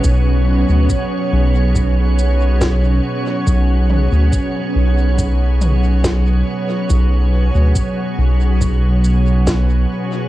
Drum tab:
SH |x-x-xxx-|x-x-xxx-|x-x-xxx-|
SD |------o-|------o-|------o-|
T2 |--------|-o---o--|--------|
BD |o-o-o-o-|o-o-o-o-|o-o-o-o-|